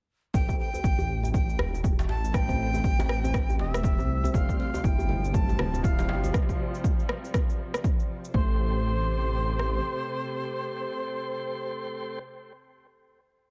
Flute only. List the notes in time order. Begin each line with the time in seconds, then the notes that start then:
0.34 G5
0.59 G5
1.34 G5
2.09 A5
2.34 G5
3.59 E5
4.34 F5
4.59 F5
4.84 G5
5.34 A5
5.84 F5
8.34 C5